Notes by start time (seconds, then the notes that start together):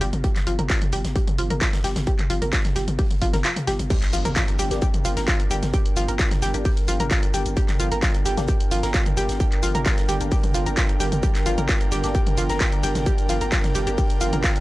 0.01 G1 G4, closed hi-hat, open hi-hat
0.13 G1, closed hi-hat, mid tom
0.24 G4, kick, closed hi-hat
0.36 snare, clap, closed hi-hat, mid tom
0.47 G1 F4, closed hi-hat, open hi-hat
0.59 G1 A#4, closed hi-hat, mid tom
0.69 F4, kick, snare, clap, closed hi-hat
0.82 closed hi-hat, mid tom
0.92 G1 G4, closed hi-hat, open hi-hat
1.05 G1, snare, closed hi-hat, mid tom
1.16 G4, kick, closed hi-hat
1.27 closed hi-hat, mid tom
1.38 G1 F4, open hi-hat
1.50 G1 A#4, closed hi-hat, mid tom
1.61 F4, kick, snare, clap, closed hi-hat
1.73 snare, closed hi-hat, mid tom
1.84 G1 G4, snare, closed hi-hat, open hi-hat
1.96 G1, snare, closed hi-hat, mid tom
2.07 G4, kick, closed hi-hat
2.19 clap, closed hi-hat, mid tom
2.30 G1 F4, closed hi-hat, open hi-hat
2.42 G1 A#4, closed hi-hat, mid tom
2.53 F4, kick, snare, clap, closed hi-hat
2.65 snare, closed hi-hat, mid tom
2.76 G1 G4, snare, closed hi-hat, open hi-hat
2.88 G1, closed hi-hat, mid tom
2.99 G4, kick, closed hi-hat, open hi-hat
3.11 closed hi-hat, mid tom
3.22 G1 F4, kick, closed hi-hat, open hi-hat
3.33 G1 A#4, snare, closed hi-hat, mid tom
3.45 F4, clap, closed hi-hat
3.56 closed hi-hat, mid tom
3.67 G1 G4, snare, open hi-hat
3.79 G1, closed hi-hat, mid tom
3.90 G2 D3 D4 G4, kick, closed hi-hat, crash, impact, shaker
4.02 snare, clap, closed hi-hat, shaker
4.13 G1 F4, closed hi-hat, open hi-hat, shaker
4.25 G1 A#4, closed hi-hat, mid tom, shaker
4.36 F4 G5, kick, snare, clap, closed hi-hat, shaker
4.44 A#4
4.48 closed hi-hat, shaker
4.58 G1 G4, closed hi-hat, open hi-hat, shaker
4.71 G1 A#3 D4 G4, snare, closed hi-hat, shaker
4.81 G4, kick, closed hi-hat, shaker
4.94 closed hi-hat, mid tom, shaker
5.05 G1 F4, closed hi-hat, open hi-hat, shaker
5.17 G1 A#4, snare, closed hi-hat, shaker
5.28 F4, kick, snare, clap, closed hi-hat, shaker
5.40 closed hi-hat, shaker
5.51 G1 G4, closed hi-hat, open hi-hat, shaker
5.63 G1, snare, closed hi-hat, mid tom, shaker
5.74 G4, kick, closed hi-hat, shaker
5.86 closed hi-hat, shaker
5.96 G1 F4, closed hi-hat, open hi-hat, shaker
6.08 G1 A#4, closed hi-hat, shaker
6.19 F4, kick, snare, clap, closed hi-hat, shaker
6.31 snare, closed hi-hat, mid tom, shaker
6.42 G1 G4, snare, closed hi-hat, open hi-hat, shaker
6.54 G1 A#3 D4 G4, closed hi-hat, shaker
6.65 G4, kick, closed hi-hat, open hi-hat, shaker
6.77 closed hi-hat, shaker
6.88 G1 F4, closed hi-hat, open hi-hat, shaker
7.00 G1 A#4, closed hi-hat, mid tom, shaker
7.10 F4, kick, snare, clap, closed hi-hat, shaker
7.23 closed hi-hat, shaker
7.34 G1 G4, closed hi-hat, open hi-hat, shaker
7.46 G1, closed hi-hat, shaker
7.57 G4, kick, closed hi-hat, shaker
7.68 snare, clap, closed hi-hat, mid tom, shaker
7.79 G1 F4, closed hi-hat, open hi-hat, shaker
7.92 G1 A#4, closed hi-hat, shaker
8.02 F4, kick, snare, clap, closed hi-hat, shaker
8.14 closed hi-hat, shaker
8.25 G1 G4, closed hi-hat, open hi-hat, shaker
8.37 G1 A#3 D4 G4, snare, closed hi-hat, mid tom, shaker
8.47 G4, kick, closed hi-hat, shaker
8.60 closed hi-hat, shaker
8.71 G1 F4, closed hi-hat, open hi-hat, shaker
8.83 G1 A#4, snare, closed hi-hat, shaker
8.94 F4, kick, snare, clap, closed hi-hat, shaker
9.06 closed hi-hat, mid tom, shaker
9.17 G1 G4, closed hi-hat, open hi-hat, shaker
9.29 G1, snare, closed hi-hat, shaker
9.40 G4, kick, closed hi-hat, shaker
9.52 clap, closed hi-hat, shaker
9.62 G1 F4, closed hi-hat, open hi-hat, shaker
9.75 G1 A#4, closed hi-hat, mid tom, shaker
9.85 F4, kick, snare, clap, closed hi-hat, shaker
9.98 snare, closed hi-hat, shaker
10.09 G1 G4, snare, closed hi-hat, open hi-hat, shaker
10.21 G1 A#3 D4 G4, closed hi-hat, shaker
10.32 G4, kick, closed hi-hat, open hi-hat, shaker
10.43 closed hi-hat, mid tom, shaker
10.54 G1 F4, closed hi-hat, open hi-hat, shaker
10.66 G1 A#4, closed hi-hat, shaker
10.77 F4, kick, snare, clap, closed hi-hat, shaker
10.89 closed hi-hat, shaker
11.00 G1 G4, closed hi-hat, open hi-hat, shaker
11.12 G1, closed hi-hat, mid tom, shaker
11.23 G4, kick, closed hi-hat, shaker
11.35 snare, clap, closed hi-hat, shaker
11.46 G1 F4, closed hi-hat, open hi-hat, shaker
11.58 G1 A#4, closed hi-hat, mid tom, shaker
11.69 F4, kick, snare, clap, closed hi-hat, shaker
11.81 closed hi-hat, shaker
11.92 G1 G4, closed hi-hat, open hi-hat, shaker
12.04 G1 A#3 D4 G4, snare, closed hi-hat, shaker
12.15 G4, kick, closed hi-hat, shaker
12.27 closed hi-hat, mid tom, shaker
12.37 G1 F4, closed hi-hat, open hi-hat, shaker
12.50 G1 A#4, snare, closed hi-hat, shaker
12.61 F4, kick, snare, clap, closed hi-hat, shaker
12.72 closed hi-hat, shaker
12.83 G1 G4, closed hi-hat, open hi-hat, shaker
12.95 G1, snare, closed hi-hat, mid tom, shaker
13.06 G4, kick, closed hi-hat, shaker
13.18 closed hi-hat, shaker
13.29 G1 F4, closed hi-hat, open hi-hat, shaker
13.41 G1 A#4, closed hi-hat, shaker
13.52 F4, kick, snare, clap, closed hi-hat, shaker
13.64 snare, closed hi-hat, mid tom, shaker
13.74 G1 G4, snare, closed hi-hat, open hi-hat, shaker
13.87 G1 A#3 D4 G4, closed hi-hat, shaker
13.98 G4, kick, closed hi-hat, open hi-hat, shaker
14.10 closed hi-hat, shaker
14.21 G1 F4, closed hi-hat, open hi-hat, shaker
14.33 G1 A#4, closed hi-hat, mid tom, shaker
14.44 F4, kick, snare, clap, closed hi-hat, shaker
14.56 closed hi-hat, shaker